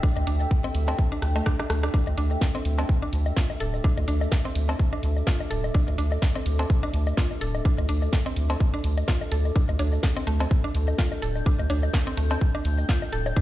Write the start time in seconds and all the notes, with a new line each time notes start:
Already playing: D4 A4 E5 G5
0.03 D4, kick, cabasa
0.17 D2, closed hi-hat, low woodblock
0.27 D2 D4, closed hi-hat, cabasa
0.40 cabasa, low woodblock
0.51 kick, cabasa
0.64 C4, low woodblock
0.75 D2, closed hi-hat, cabasa
0.88 C4, cowbell, cabasa, low woodblock
0.99 kick, cabasa
1.12 D4, low woodblock
1.22 D2, cross-stick, closed hi-hat, cabasa
1.36 A3, cabasa, low woodblock
1.46 D4, kick, cross-stick, cabasa
1.59 D4, cross-stick, low woodblock
1.70 D2 A3, cross-stick, closed hi-hat, cabasa
1.83 D4, cross-stick, cabasa, low woodblock
1.94 D4, kick, cabasa
2.07 D2, closed hi-hat, low woodblock
2.17 D2 D4, closed hi-hat, cabasa
2.31 cabasa, low woodblock
2.41 kick, snare, cabasa
2.46 D6
2.55 C4, low woodblock
2.65 D2, closed hi-hat, cabasa
2.78 C4, cowbell, cabasa, low woodblock
2.89 kick, cabasa
3.02 D4, low woodblock
3.13 D2, closed hi-hat, cabasa
3.26 cabasa, low woodblock
3.37 F4, kick, snare, cabasa
3.50 low woodblock
3.60 D1 A4, closed hi-hat, cabasa
3.74 cabasa, low woodblock
3.84 D4, kick, cabasa
3.98 D2, closed hi-hat, low woodblock
4.08 D2 D4, closed hi-hat, cabasa
4.21 cabasa, low woodblock
4.32 kick, snare, cabasa
4.45 C4, low woodblock
4.55 D2, closed hi-hat, cabasa
4.69 C4, cowbell, cabasa, low woodblock
4.79 kick, cabasa
4.93 D4, low woodblock
5.03 D2, closed hi-hat, cabasa
5.17 cabasa, low woodblock
5.27 F4, kick, snare, cabasa
5.40 low woodblock
5.50 D1 A4, closed hi-hat, cabasa
5.64 cabasa, low woodblock
5.74 D4, kick, cabasa
5.88 D2, closed hi-hat, low woodblock
5.98 D2 D4, closed hi-hat, cabasa
6.11 cabasa, low woodblock
6.22 kick, snare, cabasa
6.35 C4, low woodblock
6.46 D2, closed hi-hat, cabasa
6.59 C4, cowbell, cabasa, low woodblock
6.70 kick, cabasa
6.83 D4, low woodblock
6.93 D2, closed hi-hat, cabasa
7.06 cabasa, low woodblock
7.17 F4, kick, snare, cabasa
7.31 low woodblock
7.41 D1 A4, closed hi-hat, cabasa
7.54 cabasa, low woodblock
7.65 D4, kick, cabasa
7.78 D2, closed hi-hat, low woodblock
7.88 D2 D4, closed hi-hat, cabasa
8.02 cabasa, low woodblock
8.13 kick, snare, cabasa
8.26 C4, low woodblock
8.36 D2, closed hi-hat, cabasa
8.50 C4, cowbell, cabasa, low woodblock
8.60 kick, cabasa
8.74 D4, low woodblock
8.84 D2, closed hi-hat, cabasa
8.98 closed hi-hat, cabasa, low woodblock
9.08 F4, kick, snare, cabasa
9.21 low woodblock
9.32 D2 A4, closed hi-hat, cabasa
9.45 cabasa, low woodblock
9.56 D4, kick, cabasa
9.69 D2, closed hi-hat, low woodblock
9.79 D2 D4, closed hi-hat, high bongo, cabasa
9.93 cabasa, low woodblock
10.03 kick, snare, cabasa
10.07 G6
10.17 C4, low woodblock
10.27 D2 A3, closed hi-hat, cabasa
10.40 C4, cowbell, cabasa, low woodblock
10.50 kick, cabasa
10.64 D4, low woodblock
10.74 D2, closed hi-hat, cabasa
10.88 cabasa, low woodblock
10.98 F4, kick, snare, cabasa
11.12 low woodblock
11.22 D1 A4, closed hi-hat, cabasa
11.36 cabasa, low woodblock
11.46 D4, kick, cabasa
11.59 D2, closed hi-hat, low woodblock
11.70 D2 D4, closed hi-hat, high bongo, cabasa
11.83 cabasa, low woodblock
11.93 kick, snare, cabasa
12.07 C4, low woodblock
12.17 D2 A3, closed hi-hat, cabasa
12.31 C4, cowbell, cabasa, low woodblock
12.41 kick, cabasa
12.55 D4, low woodblock
12.64 D2, closed hi-hat, cabasa
12.78 cabasa, low woodblock
12.88 F4, kick, snare, cabasa
13.02 low woodblock
13.12 D1 A4, closed hi-hat, cabasa
13.26 high bongo, cabasa, low woodblock
13.36 D4, kick, cabasa